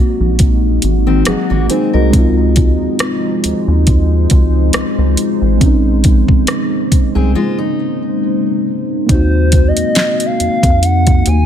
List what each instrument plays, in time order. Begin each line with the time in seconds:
Already playing: ambient pad C3 G#3 A#3 D#4 F#4, synth keys A#3 C4 D#4 F#4
0.20 analog synth bass A#1
0.39 kick, closed hi-hat
0.82 analog synth bass G#1, closed hi-hat
1.07 steel-string acoustic guitar D#3 C4
1.25 analog synth bass G#1, steel-string acoustic guitar F#3 D#4, synth keys C4 G#4, cross-stick, closed hi-hat
1.50 analog synth bass G#1, steel-string acoustic guitar A#3 F#4
1.70 steel-string acoustic guitar C4 G#4, synth keys D#4 C5, closed hi-hat
1.93 analog synth bass C2, synth keys F#4 D#5, steel-string acoustic guitar A#4
2.10 ambient pad C#3 F3, synth keys G#3 C4, kick, closed hi-hat
2.14 analog synth bass C#2, synth keys D#4 F4, ambient pad C5
2.56 kick, closed hi-hat
2.81 analog synth bass D#2
2.99 cross-stick, closed hi-hat
3.44 analog synth bass D#2, closed hi-hat
3.68 analog synth bass D#2
3.87 kick, closed hi-hat
4.30 analog synth bass C#2, kick, closed hi-hat
4.73 analog synth bass C#2, cross-stick, closed hi-hat
4.98 analog synth bass C#2
5.17 closed hi-hat
5.42 analog synth bass A1
5.57 synth keys G#3 C4, ambient pad A#3, kick, closed hi-hat
5.61 analog synth bass A#1, synth keys C#4
5.65 synth keys D#4
6.04 kick, closed hi-hat
6.28 analog synth bass C2, kick
6.47 cross-stick, closed hi-hat
6.92 analog synth bass C2, kick, closed hi-hat
7.15 analog synth bass C2, steel-string acoustic guitar C4 G#4
7.35 steel-string acoustic guitar G#3 F4
7.58 steel-string acoustic guitar D#4
9.06 analog synth bass D#2, ambient pad C3 D#3 A#3 D#4, synth keys A#3 C4, kick, closed hi-hat
9.10 synth keys D#4 F#4, soft synth lead C5
9.52 kick, closed hi-hat
9.68 soft synth lead D#5
9.77 analog synth bass F2, closed hi-hat
9.95 snare, closed hi-hat
10.20 closed hi-hat
10.26 soft synth lead F5
10.40 analog synth bass F2, closed hi-hat
10.63 analog synth bass F2, kick, closed hi-hat
10.83 soft synth lead F#5, closed hi-hat
11.07 kick, closed hi-hat
11.26 analog synth bass D#2, soft synth lead G#5, closed hi-hat